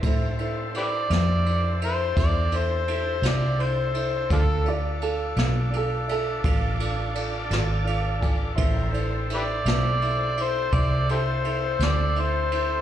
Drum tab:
RD |xxxxxxxxxxxx|xxxxxxxxxxxx|xxxxxxxxxxxx|
SD |---o--o--o--|---o-----o--|---o-----o--|
BD |o-----o-----|o-----o----o|o-----o-----|